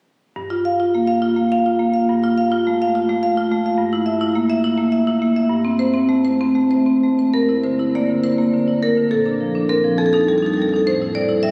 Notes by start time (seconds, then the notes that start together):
0.36 G2
0.50 F4
0.65 F5
0.80 F4
0.95 A#3
1.07 F5
1.22 F4
1.36 A#3
1.52 F5
1.66 F4
1.79 A#3
1.94 F5
2.09 G2
2.24 F4
2.38 F5
2.52 F4
2.67 A3
2.82 F5
2.95 F4
3.09 A3
3.23 F5
3.37 F4
3.52 A3
3.66 F5
3.78 G2
3.93 E4
4.06 E5
4.21 E4
4.35 A#3
4.50 E5
4.64 E4
4.77 A#3
4.92 E5
5.07 E4
5.22 A#3
5.36 E5
5.50 G2
5.65 C4
5.79 C5
5.94 C4
6.09 A3
6.25 C5
6.41 C4
6.55 A3
6.71 C5
6.86 C4
7.03 A3
7.19 C5
7.33 G2 A#4
7.49 E4
7.64 D3 C5
7.79 E4
7.95 A#3 D5
8.10 D3
8.24 E4 C5
8.38 A#3
8.53 D3
8.68 E4
8.83 A#3 A#4
8.97 D3
9.11 A#2 A4
9.26 D4
9.41 F3
9.55 D4
9.69 C4 A#4
9.84 F3
9.98 F2 A4
10.06 A4
10.13 D#4 A4
10.21 A4
10.28 G3 A4
10.38 A4
10.43 D#4 A4
10.54 G3 A4
10.62 A4
10.69 A4
10.74 D#4 A4
10.87 A2 C5
11.02 E4
11.15 G3 D5
11.29 E4
11.43 G3 E5